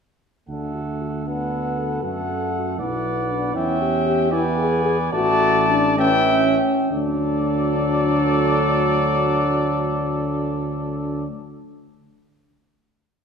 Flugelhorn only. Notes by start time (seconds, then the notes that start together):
0.49 A4
1.27 A4
2.03 A4
2.79 D5
3.56 E5
4.32 D5
5.13 D5
5.99 E5
6.91 A4